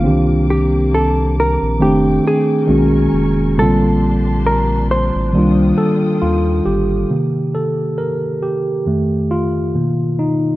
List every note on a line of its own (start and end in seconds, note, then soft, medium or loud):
0.00 0.10 D3 medium
0.00 1.76 A#3 medium
0.00 1.77 C4 medium
0.00 0.50 F4 loud
0.00 2.64 D6 medium
0.04 1.58 C2 loud
0.04 1.78 D#3 medium
0.04 1.79 A#3 medium
0.04 1.77 D4 medium
0.04 1.78 G4 medium
0.50 0.94 G4 medium
0.94 1.34 A4 medium
1.40 1.83 A#4 medium
1.63 1.82 A#1 medium
1.80 2.20 F1 loud
1.80 2.65 D#3 medium
1.80 2.67 A3 medium
1.80 2.68 A3 medium
1.80 2.69 C4 medium
1.80 2.69 D4 medium
1.80 2.26 G4 medium
1.80 2.67 G5 medium
1.80 2.69 G5 medium
2.27 3.62 G#4 medium
2.67 3.08 B1 loud
2.67 3.56 D#3 medium
2.67 3.56 G#3 medium
2.67 3.57 A#3 medium
2.67 3.57 C#4 medium
2.67 3.57 F#4 medium
2.67 3.56 A#4 medium
2.67 3.56 G#5 medium
2.67 3.56 C#6 medium
3.13 3.59 F1 medium
3.56 5.11 A#1 loud
3.56 3.64 C3 medium
3.56 5.30 G3 medium
3.56 5.31 A#3 medium
3.56 7.07 D4 medium
3.56 5.32 G4 medium
3.56 4.42 A4 medium
3.56 5.32 A5 medium
3.56 5.32 C6 medium
3.61 5.33 D3 medium
3.61 5.32 C4 medium
3.61 5.32 F4 medium
4.46 4.87 A#4 medium
4.91 6.18 C5 medium
5.16 5.35 A1 medium
5.33 5.73 C2 loud
5.33 7.06 D#3 medium
5.33 7.07 G3 medium
5.33 7.07 A#3 medium
5.33 7.08 F4 medium
5.33 7.08 G5 medium
5.33 7.08 D#6 medium
5.37 7.08 D4 medium
5.37 6.21 F4 medium
5.78 6.23 A4 loud
6.22 6.61 D#2 medium
6.22 6.67 F4 medium
6.66 7.05 G1 medium
6.66 7.56 G4 loud
7.10 8.38 C3 soft
7.10 8.38 D#3 soft
7.10 8.39 A#3 medium
7.55 7.99 A4 medium
7.98 8.43 A#4 medium
8.42 9.33 G4 medium
8.86 9.47 F2 medium
8.86 9.48 D#3 soft
8.86 9.48 A3 medium
9.31 10.21 F4 medium
9.75 10.56 B2 soft
9.75 10.56 D#3 soft
9.75 10.56 A#3 medium
10.19 10.56 D#4 medium